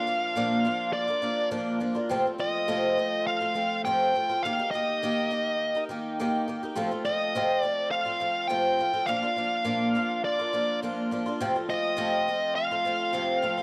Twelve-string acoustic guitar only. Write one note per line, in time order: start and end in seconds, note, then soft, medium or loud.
0.07 0.35 F3 medium
0.07 0.36 A#3 medium
0.07 0.36 D4 medium
0.07 0.37 F4 medium
0.36 0.65 A#2 medium
0.36 0.63 F3 medium
0.36 0.64 A#3 medium
0.36 0.65 D4 medium
0.36 0.66 F4 medium
0.65 1.08 F3 medium
0.65 1.08 A#3 medium
0.65 1.07 D4 medium
0.65 1.06 F4 medium
1.08 1.21 A#3 soft
1.08 1.22 D4 soft
1.08 1.22 F4 medium
1.22 1.50 F3 medium
1.22 1.50 A#3 medium
1.22 1.50 D4 medium
1.22 1.50 F4 medium
1.51 1.80 A#2 medium
1.51 1.79 F3 medium
1.51 1.80 A#3 medium
1.51 1.80 D4 medium
1.51 1.81 F4 medium
1.80 1.95 F3 medium
1.80 1.95 A#3 medium
1.80 1.94 D4 medium
1.80 1.93 F4 medium
1.95 2.10 A#3 medium
1.95 2.10 D4 medium
1.95 2.09 F4 medium
2.09 2.24 F2 medium
2.09 2.25 C3 medium
2.09 2.25 F3 medium
2.09 2.25 A3 medium
2.09 2.25 C4 medium
2.09 2.24 F4 loud
2.25 2.37 F3 soft
2.25 2.37 A3 soft
2.25 2.38 C4 soft
2.25 2.38 F4 soft
2.38 2.67 F3 medium
2.38 2.67 A3 medium
2.38 2.68 C4 medium
2.38 2.68 F4 medium
2.68 2.97 F2 medium
2.68 2.97 C3 medium
2.68 2.96 F3 medium
2.68 2.97 A3 medium
2.68 2.97 C4 loud
2.68 2.98 F4 medium
2.98 3.41 F3 medium
2.98 3.41 A3 medium
2.98 3.40 C4 medium
2.98 3.39 F4 medium
3.40 3.53 F3 soft
3.40 3.54 A3 soft
3.40 3.55 C4 medium
3.40 3.55 F4 medium
3.54 3.84 F3 medium
3.54 3.84 A3 medium
3.54 3.84 C4 medium
3.54 3.85 F4 medium
3.85 4.14 F2 medium
3.85 4.14 C3 medium
3.85 4.13 F3 medium
3.85 4.14 A3 medium
3.85 4.14 C4 medium
3.85 4.15 F4 medium
4.14 4.28 F3 soft
4.14 4.29 A3 medium
4.14 4.28 C4 medium
4.14 4.28 F4 medium
4.29 4.44 F3 soft
4.29 4.44 A3 soft
4.29 4.43 C4 soft
4.29 4.43 F4 medium
4.45 4.58 D#3 medium
4.45 4.58 A#3 medium
4.45 4.58 D#4 medium
4.45 4.58 G4 medium
4.59 4.73 A#3 soft
4.59 4.73 D#4 soft
4.59 4.72 G4 medium
4.73 5.01 D#3 medium
4.73 5.02 A#3 medium
4.73 5.02 D#4 medium
4.73 5.02 G4 medium
5.02 5.29 D#3 medium
5.02 5.30 A#3 medium
5.02 5.31 D#4 medium
5.02 5.31 G4 medium
5.30 5.73 D#3 medium
5.30 5.74 A#3 medium
5.30 5.74 D#4 medium
5.30 5.74 G4 medium
5.75 5.89 A#3 medium
5.75 5.89 D#4 medium
5.75 5.88 G4 medium
5.89 6.17 D#3 medium
5.89 6.18 A#3 medium
5.89 6.18 D#4 medium
5.89 6.18 G4 medium
6.20 6.46 D#3 medium
6.20 6.47 A#3 medium
6.20 6.48 D#4 loud
6.20 6.48 G4 medium
6.48 6.61 D#3 medium
6.48 6.61 A#3 medium
6.48 6.62 D#4 medium
6.48 6.62 G4 medium
6.63 6.76 A#3 soft
6.63 6.76 D#4 medium
6.63 6.76 G4 medium
6.75 6.90 F2 medium
6.75 6.90 C3 medium
6.75 6.90 F3 medium
6.75 6.90 A3 medium
6.75 6.90 C4 medium
6.75 6.90 F4 loud
6.91 7.03 F3 soft
6.91 7.04 A3 soft
6.91 7.05 C4 soft
6.91 7.05 F4 soft
7.05 7.33 F3 medium
7.05 7.33 A3 medium
7.05 7.34 C4 medium
7.05 7.34 F4 medium
7.35 7.63 F2 medium
7.35 7.63 C3 medium
7.35 7.62 F3 medium
7.35 7.62 A3 medium
7.35 7.62 C4 medium
7.35 7.63 F4 medium
7.63 8.06 F3 medium
7.63 8.06 A3 medium
7.63 8.05 C4 medium
7.63 8.04 F4 medium
8.05 8.19 F3 soft
8.05 8.20 A3 soft
8.05 8.20 C4 soft
8.05 8.20 F4 medium
8.20 8.49 F3 medium
8.20 8.49 A3 medium
8.20 8.49 C4 medium
8.20 8.50 F4 medium
8.49 8.78 F2 medium
8.49 8.79 C3 medium
8.49 8.78 F3 medium
8.49 8.78 A3 medium
8.49 8.79 C4 medium
8.49 8.79 F4 medium
8.79 8.93 F3 medium
8.79 8.93 A3 medium
8.79 8.92 C4 medium
8.79 8.92 F4 medium
8.93 9.07 F3 soft
8.93 9.08 A3 soft
8.93 9.08 C4 medium
8.93 9.08 F4 medium
9.07 9.22 A#2 medium
9.07 9.23 F3 medium
9.07 9.22 A#3 medium
9.07 9.22 D4 medium
9.07 9.21 F4 medium
9.22 9.36 A#3 soft
9.22 9.37 D4 soft
9.22 9.37 F4 soft
9.36 9.64 F3 soft
9.36 9.64 A#3 medium
9.36 9.64 D4 medium
9.36 9.65 F4 medium
9.64 9.94 A#2 medium
9.64 9.94 F3 medium
9.64 9.94 A#3 medium
9.64 9.95 D4 medium
9.64 9.95 F4 medium
9.95 10.38 F3 medium
9.95 10.39 A#3 medium
9.95 10.38 D4 medium
9.95 10.38 F4 medium
10.39 10.52 A#3 soft
10.39 10.53 D4 soft
10.39 10.53 F4 soft
10.53 10.82 F3 medium
10.53 10.82 A#3 medium
10.53 10.83 D4 medium
10.53 10.83 F4 medium
10.82 11.11 A#2 medium
10.82 11.10 F3 medium
10.82 11.11 A#3 medium
10.82 11.11 D4 medium
10.82 11.12 F4 medium
11.11 11.26 F3 medium
11.11 11.26 A#3 medium
11.11 11.26 D4 medium
11.11 11.25 F4 medium
11.26 11.41 A#3 soft
11.26 11.41 D4 medium
11.26 11.40 F4 medium
11.40 11.55 F2 loud
11.40 11.55 C3 medium
11.40 11.55 F3 medium
11.40 11.55 A3 medium
11.40 11.55 C4 loud
11.40 11.54 F4 medium
11.55 11.68 F3 soft
11.55 11.68 A3 soft
11.55 11.69 C4 soft
11.55 11.70 F4 soft
11.69 11.97 F3 medium
11.69 11.97 A3 medium
11.69 11.96 C4 medium
11.69 11.97 F4 medium
11.97 12.27 F2 medium
11.97 12.27 C3 medium
11.97 12.27 F3 medium
11.97 12.27 A3 medium
11.97 12.27 C4 medium
11.97 12.27 F4 medium
12.28 12.71 F3 medium
12.28 12.71 A3 medium
12.28 12.71 C4 medium
12.28 12.70 F4 medium
12.71 12.84 F3 soft
12.71 12.84 A3 soft
12.71 12.85 C4 medium
12.71 12.86 F4 medium
12.85 13.13 F3 medium
12.85 13.13 A3 medium
12.85 13.13 C4 medium
12.85 13.13 F4 medium
13.13 13.43 F2 medium
13.13 13.43 C3 medium
13.13 13.41 F3 medium
13.13 13.42 A3 medium
13.13 13.43 C4 medium
13.13 13.43 F4 medium
13.42 13.58 F3 medium
13.42 13.58 A3 medium
13.42 13.57 C4 medium
13.42 13.56 F4 medium
13.57 13.63 F3 soft
13.57 13.63 A3 soft
13.57 13.63 C4 soft
13.57 13.63 F4 medium